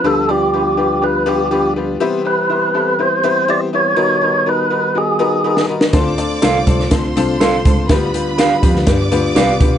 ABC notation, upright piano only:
X:1
M:4/4
L:1/8
Q:1/4=122
K:Gmix
V:1 name="Upright piano"
[B,DFGB] [B,DFGd] [B,DFGB] [B,DFGB] [B,DFGB] [B,DFGB] [B,DFGB] [B,DFGB] | [B,CEGB] [B,CEGB] [B,CEGc] [B,CEGA] [B,CEGB] [B,CEGB] [B,CEGc] [B,CEGB] | [B,^D^F^AB] [B,DFAB] [B,DFAB] [B,DFAB] [B,DFAB] [B,DFAB] [B,DFAB] [B,DFAB] | [CDFAc] [CDFAd] [CDFAc] [CDFAc] [CDFAc] [CDFAc] [CDFAc] [CDFAc] |
[B,DFGB] [B,DFGB] [B,DFGB] [B,DFGB] [B,DFGB] [B,DFGB] [B,DFGB] [B,DFGB] |]
V:2 name="Upright piano" clef=bass
D,3 z4 z | C,3 z4 z | B,,3 z4 z | D,3 z4 z |
D,3 z4 z |]